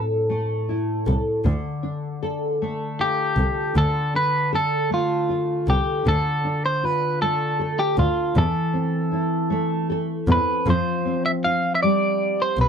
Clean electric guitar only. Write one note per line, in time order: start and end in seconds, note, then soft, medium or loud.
3.01 3.77 G4 medium
3.78 4.16 A4 medium
4.16 4.51 B4 medium
4.55 4.90 A4 medium
4.94 5.69 F4 medium
5.70 6.08 G4 medium
6.08 6.65 A4 medium
6.66 6.85 C5 medium
6.85 7.21 B4 medium
7.22 7.81 A4 medium
7.79 7.97 G4 medium
7.99 8.38 F4 medium
8.38 9.87 A4 medium
10.32 10.69 B4 medium
10.70 11.25 C5 medium
11.26 11.31 E5 medium
11.44 11.75 F5 medium
11.75 11.82 E5 medium
11.83 12.41 D5 medium
12.42 12.60 C5 medium
12.61 12.69 B4 medium